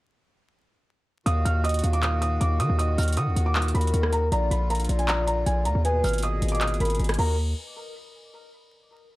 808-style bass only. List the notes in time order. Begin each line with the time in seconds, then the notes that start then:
1.26 D#2
1.45 D#2
1.84 D#2
2.41 D#2
2.60 D#3
2.69 D#2
2.98 D#2
3.17 D#3
3.27 D#2
3.36 D#2
3.74 D#2
3.94 D#2
4.32 A#1
4.51 A#1
4.89 A#1
5.46 A#1
5.66 D2
5.75 D#2
6.04 G#1
6.42 G#1
6.80 G#1
6.99 G#1
7.18 D#2